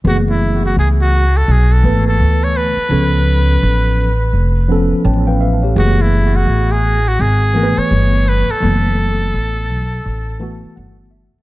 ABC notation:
X:1
M:4/4
L:1/16
Q:"Swing 16ths" 1/4=84
K:F#m
V:1 name="Muted trumpet"
F E2 F G F2 A G A2 A2 c B2- | B8- B2 z6 | F E2 F2 G2 F G3 c3 B A- | A12 z4 |]
V:2 name="Tine electric piano"
z16 | z12 [c=ga] [B^eg] [B=e^e] [=Gc]- | [=Gc] z12 z3 | z8 z2 a2 f2 e2 |]
V:3 name="Tine electric piano"
[E,A,B,G]6 z4 [E,A,B,B]4 z2 | [^E,B,CA]6 z4 [E,B,CA]4 z2 | [E,G,A,B,G]6 z4 [E,A,B,^AB]4 z2 | [E,A,B,A]6 z4 [E,A,B,F]4 z2 |]
V:4 name="Upright bass" clef=bass
F,,,4 C,,4 B,,,2 G,,,2 D,,3 z | C,,4 A,,,4 ^E,,,3 z A,,,4 | F,,,4 A,,,4 G,,,3 z =G,,,3 z | F,,,4 A,,,2 B,,,2 A,,,3 z =G,,,3 z |]